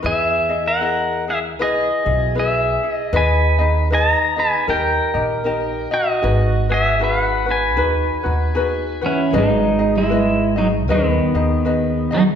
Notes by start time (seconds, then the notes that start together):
0.02 E2 E4 G#4 B4 E5
0.07 G#4
0.49 E4 G#4 D#5
0.68 A#4 F#5
0.81 E4 G#4 D#5
1.28 E4 G#4 E5
1.59 B1 E4 G#4 B4 D#5
2.05 B1 E4 G#4 D#5
2.35 E4 G#4 B4
2.39 G#4 E5
2.83 E4 G#4
2.93 D#5
3.13 D#2 D#4 G#4 B4 D#5
3.17 G#5
3.59 D#4 G#4 D#5
3.90 D#4 G#4 B4 D#5
3.94 A5
4.12 A#5
4.36 D#4 G#4 B4 D#5 G#5
4.67 D#2 D#4 G4 A#4 D#5 G5
5.14 A#1 D#4 G4 D#5
5.44 D#4 G4 A#4 D#5
5.91 D#4 F#4 D#5
6.22 G#1 D#4 F#4 G#4 B4
6.69 F#4 G#4 B4
6.74 E5
6.99 D#4 F#4 G#4 B4
7.03 B4 F5
7.22 F#5
7.46 D#4 F#4 B4
7.51 B4 G#5
7.76 D#2 D#4 F#4 G#4 B4
8.23 D#2 D#4 F#4 B4
8.55 D#4 F#4 G#4 B4
9.01 E3 F#4 B4
9.06 C#4 E4
9.31 G#1 G#3 D#4 G#4 B4 D#5
9.38 G#3 D#4
9.79 D#4 G#4 D#5
9.95 G#3 E4
9.99 G#3
10.10 G#4 B4 D#5
10.56 F#3 D#4 G#4 D#5
10.89 D#2 D#3 B3 D#4 G#4 B4 D#5
11.35 D#2 D#4 G#4 D#5
11.65 D#4 G#4 B4 D#5
12.11 F#3 D#4 G#4 D#5